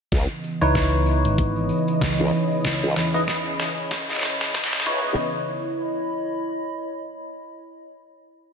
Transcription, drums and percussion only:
0.12 kick medium
0.12 snare soft
0.12 closed hi-hat medium
0.12 tambourine medium
0.30 tambourine soft
0.44 tambourine medium
0.62 closed hi-hat soft
0.62 tambourine soft
0.75 kick medium
0.75 snare soft
0.75 closed hi-hat medium
0.75 tambourine medium
0.94 tambourine soft
1.06 tambourine medium
1.25 closed hi-hat medium
1.25 tambourine soft
1.38 kick loud
1.38 closed hi-hat medium
1.38 tambourine soft
1.56 tambourine soft
1.69 tambourine loud
1.88 closed hi-hat medium
1.88 tambourine soft
2.02 kick loud
2.02 snare medium
2.02 closed hi-hat medium
2.02 tambourine soft
2.20 closed hi-hat soft
2.20 tambourine soft
2.33 tambourine loud
2.51 tambourine soft
2.64 kick loud
2.64 snare medium
2.64 closed hi-hat medium
2.64 tambourine medium
2.83 tambourine soft
2.96 snare medium
2.96 tambourine medium
3.14 closed hi-hat soft
3.14 tambourine soft
3.28 kick medium
3.28 snare medium
3.28 closed hi-hat medium
3.28 tambourine medium
3.46 tambourine soft
3.59 snare medium
3.59 tambourine loud
3.77 closed hi-hat medium
3.77 tambourine soft
3.91 kick loud
3.91 snare medium
3.91 closed hi-hat medium
3.91 tambourine medium
4.09 snare soft
4.09 tambourine soft
4.13 snare soft
4.16 snare medium
4.19 snare medium
4.19 tambourine loud
4.23 snare loud
4.41 snare medium
4.41 closed hi-hat medium
4.41 tambourine soft
4.54 kick loud
4.54 snare loud
4.54 closed hi-hat medium
4.54 tambourine medium
4.64 snare medium
4.73 snare medium
4.73 closed hi-hat soft
4.73 tambourine soft
4.80 snare medium
4.86 kick loud
4.86 tambourine medium
5.04 tambourine soft

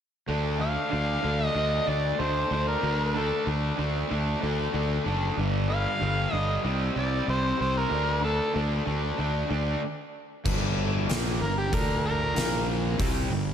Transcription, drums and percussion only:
10.45 kick loud
10.45 crash loud
11.10 snare loud
11.10 open hi-hat soft
11.73 kick loud
11.73 open hi-hat medium
12.36 snare loud
12.36 open hi-hat medium
12.99 kick loud
12.99 open hi-hat medium

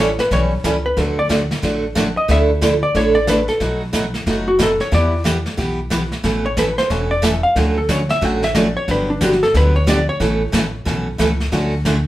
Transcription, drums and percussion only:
0.19 snare medium
0.31 brush sweep soft
0.31 kick soft
0.31 snare soft
0.64 kick soft
0.64 snare medium
0.64 hi-hat pedal medium
0.97 brush sweep medium
0.97 kick soft
0.97 snare soft
1.30 kick soft
1.30 snare medium
1.30 hi-hat pedal medium
1.51 snare soft
1.63 brush sweep soft
1.63 kick soft
1.63 snare soft
1.96 kick soft
1.96 snare medium
1.96 hi-hat pedal medium
2.29 brush sweep soft
2.29 kick soft
2.29 snare medium
2.62 kick soft
2.62 snare medium
2.62 hi-hat pedal medium
2.95 brush sweep soft
2.95 kick soft
2.95 snare medium
3.27 kick soft
3.27 snare medium
3.27 hi-hat pedal medium
3.48 snare soft
3.60 brush sweep medium
3.60 kick soft
3.60 snare medium
3.93 kick soft
3.93 snare medium
3.93 hi-hat pedal medium
4.14 snare soft
4.26 brush sweep soft
4.26 kick soft
4.26 snare soft
4.59 kick soft
4.59 snare medium
4.59 hi-hat pedal medium
4.80 snare soft
4.92 brush sweep medium
4.92 kick soft
4.92 snare medium
5.25 kick soft
5.25 snare medium
5.25 hi-hat pedal medium
5.46 snare soft
5.58 brush sweep soft
5.58 kick soft
5.58 snare soft
5.91 kick soft
5.91 snare medium
5.91 hi-hat pedal medium
6.12 snare soft
6.24 brush sweep medium
6.24 kick soft
6.24 snare medium
6.57 kick soft
6.57 snare medium
6.57 hi-hat pedal medium
6.78 snare soft
6.90 brush sweep soft
6.90 kick soft
6.90 snare soft
7.23 kick soft
7.23 snare medium
7.23 hi-hat pedal medium
7.56 brush sweep medium
7.56 kick soft
7.56 snare medium
7.89 kick soft
7.89 snare medium
7.89 hi-hat pedal medium
8.09 snare soft
8.22 brush sweep soft
8.22 kick soft
8.22 snare medium
8.43 snare medium
8.55 kick soft
8.55 snare medium
8.55 hi-hat pedal medium
8.88 brush sweep medium
8.88 kick soft
8.88 snare soft
9.21 kick soft
9.21 snare medium
9.21 hi-hat pedal medium
9.32 snare soft
9.43 snare medium
9.54 brush sweep soft
9.54 kick soft
9.54 snare medium
9.87 kick soft
9.87 snare medium
9.87 hi-hat pedal medium
10.20 brush sweep medium
10.20 kick soft
10.20 snare medium
10.53 kick soft
10.53 snare medium
10.53 hi-hat pedal medium
10.86 brush sweep medium
10.86 kick soft
10.86 snare medium
11.19 kick soft
11.19 snare medium
11.19 hi-hat pedal medium
11.40 snare soft
11.52 brush sweep medium
11.52 kick soft
11.52 snare soft
11.85 kick soft
11.85 snare medium
11.85 hi-hat pedal medium

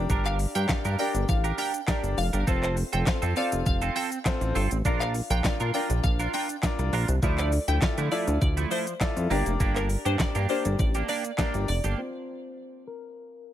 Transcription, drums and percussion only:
0.10 kick loud
0.10 shaker medium
0.25 clap medium
0.25 closed hi-hat medium
0.25 shaker medium
0.39 open hi-hat medium
0.39 shaker medium
0.55 closed hi-hat medium
0.55 shaker medium
0.69 kick loud
0.69 snare loud
0.69 clap loud
0.69 shaker medium
0.85 closed hi-hat medium
0.85 shaker medium
0.99 open hi-hat medium
0.99 shaker medium
1.15 closed hi-hat medium
1.15 shaker medium
1.29 kick loud
1.29 shaker medium
1.44 closed hi-hat medium
1.44 shaker medium
1.58 open hi-hat medium
1.58 shaker medium
1.74 closed hi-hat medium
1.74 shaker medium
1.88 kick loud
1.88 snare medium
1.88 clap loud
1.88 shaker medium
2.04 closed hi-hat medium
2.04 shaker medium
2.18 open hi-hat medium
2.18 shaker medium
2.33 closed hi-hat medium
2.33 shaker medium
2.47 kick loud
2.47 shaker medium
2.63 clap medium
2.63 closed hi-hat medium
2.63 shaker medium
2.77 open hi-hat medium
2.77 shaker medium
2.93 closed hi-hat medium
2.93 shaker medium
3.07 kick loud
3.07 snare loud
3.07 clap loud
3.07 shaker medium
3.22 closed hi-hat medium
3.22 shaker medium
3.36 open hi-hat medium
3.36 shaker medium
3.52 closed hi-hat medium
3.52 shaker medium
3.66 kick loud
3.66 shaker medium
3.82 closed hi-hat medium
3.82 shaker medium
3.96 open hi-hat medium
3.96 shaker medium
4.12 closed hi-hat medium
4.12 shaker medium
4.25 kick loud
4.25 snare medium
4.25 clap loud
4.25 shaker medium
4.41 closed hi-hat medium
4.41 shaker medium
4.55 open hi-hat medium
4.55 shaker medium
4.71 closed hi-hat medium
4.71 shaker medium
4.85 kick loud
4.85 shaker medium
5.01 clap medium
5.01 closed hi-hat medium
5.01 shaker medium
5.14 open hi-hat medium
5.14 shaker medium
5.30 closed hi-hat medium
5.30 shaker medium
5.44 kick loud
5.44 snare loud
5.44 clap loud
5.44 shaker medium
5.60 closed hi-hat medium
5.60 shaker medium
5.74 open hi-hat medium
5.74 shaker medium
5.90 closed hi-hat medium
5.90 shaker medium
6.04 kick loud
6.04 shaker medium
6.20 closed hi-hat medium
6.20 shaker medium
6.34 open hi-hat medium
6.34 shaker medium
6.49 closed hi-hat medium
6.49 shaker medium
6.63 kick loud
6.63 snare medium
6.63 clap loud
6.63 shaker medium
6.79 closed hi-hat medium
6.79 shaker medium
6.93 open hi-hat medium
6.93 shaker medium
7.08 closed hi-hat medium
7.08 shaker medium
7.23 kick loud
7.23 shaker medium
7.38 clap medium
7.38 closed hi-hat soft
7.38 shaker medium
7.52 open hi-hat medium
7.52 shaker medium
7.68 closed hi-hat medium
7.68 shaker medium
7.82 kick loud
7.82 snare loud
7.82 clap loud
7.82 shaker medium
7.98 closed hi-hat medium
7.98 shaker medium
8.12 open hi-hat medium
8.12 shaker medium
8.28 closed hi-hat medium
8.28 shaker medium
8.42 kick loud
8.42 shaker medium
8.57 closed hi-hat medium
8.57 shaker medium
8.71 open hi-hat medium
8.71 shaker medium
8.87 closed hi-hat medium
8.87 shaker medium
9.01 kick loud
9.01 snare medium
9.01 clap loud
9.01 shaker medium
9.17 closed hi-hat medium
9.17 shaker medium
9.31 open hi-hat medium
9.31 shaker medium
9.46 closed hi-hat medium
9.46 shaker medium
9.60 kick loud
9.60 shaker medium
9.76 clap medium
9.76 closed hi-hat medium
9.76 shaker medium
9.89 open hi-hat medium
9.89 shaker medium
10.06 closed hi-hat medium
10.06 shaker medium
10.19 kick loud
10.19 snare loud
10.19 clap loud
10.19 shaker medium
10.35 closed hi-hat medium
10.35 shaker medium
10.49 open hi-hat medium
10.49 shaker soft
10.65 closed hi-hat medium
10.65 shaker medium
10.79 kick loud
10.79 shaker medium
10.94 closed hi-hat medium
10.94 shaker medium
11.09 open hi-hat medium
11.09 shaker medium
11.24 closed hi-hat medium
11.24 shaker medium
11.38 kick loud
11.38 snare medium
11.38 clap loud
11.38 shaker medium
11.54 closed hi-hat medium
11.54 shaker medium
11.68 open hi-hat medium
11.68 shaker medium
11.84 closed hi-hat medium
11.84 shaker medium

